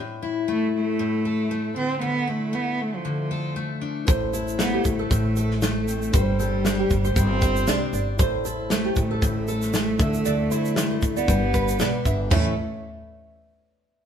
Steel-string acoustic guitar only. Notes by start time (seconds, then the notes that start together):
Already playing: A2
0.22 E4
0.48 A3
0.99 A2
1.25 A4
1.51 A3
1.76 D3
2.01 D3
2.27 E4
2.53 A3
3.05 D3
3.31 A4
3.56 A3
3.81 D4
4.07 A2
4.33 E4
4.59 A3
5.11 A2
5.37 A4
5.62 A3
5.88 C4
6.13 G3
6.40 G4
6.65 D4
7.16 G3
7.42 C5
7.67 D4
7.93 D4
8.19 A2
8.45 E4
8.71 A3
9.22 A2
9.48 A4
9.74 A3
10.00 D3
10.26 D3
10.51 E4
10.78 A3
11.28 G3
11.54 B4
11.80 D4
12.06 D4
12.31 A2 E3 A3 C#4 E4 A4